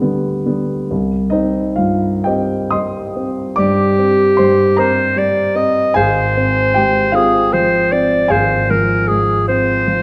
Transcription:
Already playing: grand piano D2 G3 B3
0.00 grand piano D3 G3 B3
0.46 grand piano D3 G3 B3
0.91 grand piano C2
1.30 grand piano C4 D#4 D#5
1.76 grand piano G2 F4 F5
2.24 grand piano C4 G4 D#5 G5
2.71 grand piano G3 D#5 C6 D#6
3.16 grand piano C4
3.56 grand piano G2 D5 D6, clarinet G4
3.99 grand piano C4
4.37 grand piano G2 C5 C6
4.77 grand piano C4 A#4 A#5, clarinet C5
5.16 grand piano G3, clarinet D5
5.55 grand piano C4, clarinet D#5
5.94 grand piano G#1 G#4 F5 G#5, clarinet C5
6.37 grand piano C4
6.74 grand piano G#2 G4 G5
7.12 grand piano C4 F4 C5 F5, clarinet G#4
7.53 grand piano F3, clarinet C5
7.92 grand piano C4, clarinet D5
8.28 grand piano G#1 G#4 F5 G#5, clarinet C5
8.70 grand piano F3, clarinet A#4
9.08 grand piano G#2, clarinet G#4
9.48 grand piano C4, clarinet C5
9.88 grand piano F3

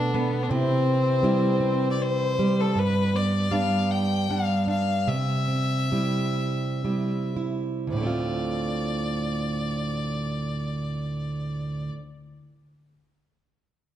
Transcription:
Already playing: steel-string acoustic guitar B2 A3 B3 D4, harmonium D3 B3 A4, fiddle D4
0.13 fiddle B3, steel-string acoustic guitar B3
0.43 fiddle D4
0.49 steel-string acoustic guitar C3 E4, harmonium E3 C4 G4, fiddle C4
1.23 steel-string acoustic guitar G3 C4 E4
1.60 steel-string acoustic guitar C4
1.91 fiddle D5
2.02 fiddle C5
2.39 steel-string acoustic guitar G3
2.60 fiddle A4
2.75 steel-string acoustic guitar G2, fiddle B4
3.14 steel-string acoustic guitar B3, fiddle D5
3.51 steel-string acoustic guitar G3 B3 D4, fiddle F5
3.91 fiddle G5
4.29 steel-string acoustic guitar G3 B3 D4, fiddle F5
4.67 steel-string acoustic guitar D4, fiddle F5
5.07 steel-string acoustic guitar C3, fiddle E5
5.48 steel-string acoustic guitar C4
5.92 steel-string acoustic guitar G3 C4 E4
6.84 steel-string acoustic guitar G3 C4 E4
7.37 steel-string acoustic guitar E4
7.87 steel-string acoustic guitar D2
7.92 steel-string acoustic guitar A2, fiddle D5
7.96 steel-string acoustic guitar D3 A3
8.03 steel-string acoustic guitar C4 F4

